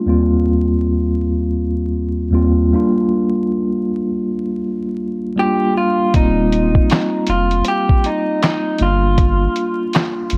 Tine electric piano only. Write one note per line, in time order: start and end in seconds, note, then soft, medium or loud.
0.06 1.20 D#2 medium
0.06 1.21 G3 medium
0.06 1.21 A#3 medium
0.06 1.21 C4 medium
0.06 1.22 F4 medium
2.32 2.71 D#2 medium
2.32 2.71 G3 medium
2.32 2.72 A#3 medium
2.32 2.72 C4 medium
2.32 2.73 F4 medium
2.73 3.96 G3 medium
2.73 3.96 A#3 medium
2.73 3.97 D4 medium
2.73 3.97 F4 medium
5.36 5.98 G3 medium
5.36 5.98 A#3 medium
5.36 5.99 D4 medium
5.36 5.99 F4 medium
6.14 7.28 G3 medium
6.14 7.28 A#3 medium
6.14 7.29 C4 medium
6.14 7.29 F4 medium
8.79 10.03 G3 medium
8.79 10.03 A#3 medium
8.79 10.04 D4 medium
8.79 10.04 F4 medium